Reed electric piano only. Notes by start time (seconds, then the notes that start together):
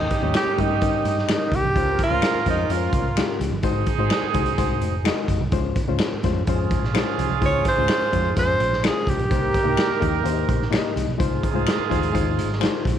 Already playing: G3 C#4 D#4 A#4
0.22 G3 C#4 D#4 C#5
0.56 G3 C#4 D#4 A#4
0.81 G3 C#4 D#4 A#4
1.28 G3 C#4 D#4 A#4
1.75 G#3 C#4 F4 C5
2.10 G#3 C#4 F4 C5
2.46 G#3 C#4 F4 C5
2.69 G#3 C#4 F4 A#4
2.77 C5
3.17 G#3 C#4 F4 G4
3.63 G#3 D#4 F#4 C5
3.99 G#3 D#4 F#4 C5
4.33 G#3 D#4 F#4 C5
4.58 G#3 D#4 F#4 C5
5.04 G#3 D#4 F#4 D#5
5.52 G#3 C#4 F4 C5
5.88 G#3 C#4 F4 C5
6.23 G#3 C#4 F4 C5
6.48 G#3 C#4 F4 C5
6.94 G#3 C#4 F4 C5
7.41 G#3 C#4 F4 C5
7.77 G#3 C#4 F4 C5
8.12 G#3 C#4 F4 C5
8.36 G#3 C#4 F4 C5
8.83 G#3 C#4 D#4 C5
8.90 F4
9.30 A#3 D#4 G4 C5
9.64 A#3 D#4 G4 A#4
10.00 A#3 D#4 G4 A#4
10.24 A#3 C#4 G4 C5
10.30 D#4
10.70 A#3 D#4 G4 C#5
10.78 D#5
11.18 G#3 D#4 F4 C5
11.54 G#3 D#4 F4 C5
11.90 G#3 D#4 F4 C5
12.13 G#3 D#4 F4 C5
12.60 G#3 D#4 F4 C5